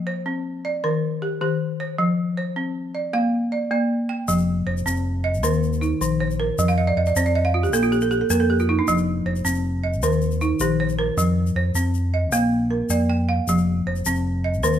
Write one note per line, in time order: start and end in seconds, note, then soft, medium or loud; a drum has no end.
0.07 0.64 C5 medium
0.26 0.64 C4 medium
0.65 1.03 D5 medium
0.84 1.22 D#3 medium
0.84 1.41 A#4 medium
1.22 1.40 G4 medium
1.41 1.79 D#3 medium
1.41 1.98 G4 medium
1.80 2.18 C5 medium
1.98 2.37 F3 medium
2.37 2.95 C5 medium
2.56 2.94 C4 medium
2.95 3.33 D5 medium
3.13 3.52 A#3 medium
3.13 3.71 F5 medium
3.52 3.70 D5 medium
3.71 4.09 A#3 medium
3.71 4.28 D5 medium
4.09 4.47 G5 medium
4.28 4.61 F1 loud
4.28 4.67 F3 medium
4.28 shaker medium
4.38 shaker soft
4.66 4.83 F1 medium
4.66 5.24 C5 medium
4.77 shaker soft
4.86 5.43 F1 medium
4.86 5.24 C4 medium
4.86 shaker medium
4.97 shaker soft
5.24 5.62 D#5 medium
5.34 shaker soft
5.43 5.92 D#2 loud
5.43 5.81 D#3 medium
5.43 6.01 A#4 medium
5.43 shaker medium
5.53 shaker soft
5.63 shaker soft
5.73 shaker soft
5.81 6.39 D#4 medium
5.81 shaker soft
6.01 6.50 A#1 medium
6.01 6.39 D#3 medium
6.01 shaker soft
6.20 6.77 C5 medium
6.31 shaker soft
6.40 6.77 A#4 medium
6.58 6.91 F2 loud
6.58 6.97 F3 medium
6.58 shaker medium
6.68 6.86 F5 medium
6.68 shaker soft
6.78 6.95 D#5 medium
6.87 7.05 D5 medium
6.97 7.13 F2 medium
6.97 7.15 D#5 medium
7.06 7.24 D5 medium
7.06 shaker soft
7.16 7.73 F2 medium
7.16 7.54 C4 medium
7.16 7.34 C5 medium
7.16 shaker medium
7.26 7.43 D5 medium
7.26 shaker soft
7.35 7.53 D#5 medium
7.45 7.62 F5 medium
7.54 7.72 F4 medium
7.63 7.81 G4 medium
7.63 shaker soft
7.73 8.22 A#1 loud
7.73 8.11 A#3 medium
7.73 7.91 A4 medium
7.73 shaker medium
7.83 8.00 F4 medium
7.92 8.10 G4 medium
7.92 shaker soft
8.01 8.19 A4 medium
8.01 shaker soft
8.11 8.29 G4 medium
8.11 shaker soft
8.21 8.39 A4 medium
8.30 8.79 F2 medium
8.30 8.68 A#3 medium
8.30 8.48 A#4 medium
8.30 shaker medium
8.40 8.58 A4 medium
8.50 8.67 G4 medium
8.59 8.77 F4 medium
8.59 shaker soft
8.69 8.86 D#4 medium
8.79 8.96 D4 medium
8.87 9.20 F1 loud
8.87 9.26 F3 loud
8.87 shaker medium
8.98 shaker soft
9.25 9.42 F1 medium
9.25 9.83 C5 medium
9.36 shaker soft
9.45 10.03 F1 medium
9.45 9.83 C4 medium
9.45 shaker medium
9.55 shaker soft
9.83 10.22 D#5 medium
9.93 shaker soft
10.03 10.51 D#2 loud
10.03 10.41 D#3 medium
10.03 10.60 A#4 medium
10.03 shaker medium
10.12 shaker soft
10.21 shaker soft
10.31 shaker soft
10.41 10.98 D#4 medium
10.41 shaker soft
10.60 11.09 A#1 medium
10.60 10.99 D#3 medium
10.60 11.18 G4 medium
10.60 shaker medium
10.80 11.37 C5 medium
10.89 shaker soft
10.99 11.37 A#4 medium
11.17 11.50 F2 loud
11.17 11.56 F3 medium
11.17 shaker medium
11.46 shaker soft
11.55 11.72 F2 medium
11.55 12.13 C5 medium
11.74 12.32 F2 medium
11.74 12.13 C4 medium
11.74 shaker medium
11.94 shaker soft
12.14 12.52 D#5 medium
12.32 12.81 A#1 medium
12.32 12.71 A#3 medium
12.32 12.90 F5 medium
12.32 shaker medium
12.70 13.28 A#4 medium
12.89 13.39 F2 medium
12.89 13.29 A#3 medium
12.89 13.48 D5 medium
12.89 shaker medium
13.10 13.67 G5 medium
13.29 13.67 F5 medium
13.47 13.80 F1 loud
13.47 13.87 F3 medium
13.47 shaker medium
13.58 shaker soft
13.86 14.02 F1 medium
13.86 14.44 C5 medium
13.96 shaker soft
14.05 14.63 F1 medium
14.05 14.44 C4 medium
14.05 shaker medium
14.16 shaker soft
14.44 14.79 D#5 medium
14.54 shaker soft
14.63 14.79 D#2 loud
14.63 14.79 D#3 medium
14.63 14.79 A#4 medium
14.63 shaker medium
14.73 shaker soft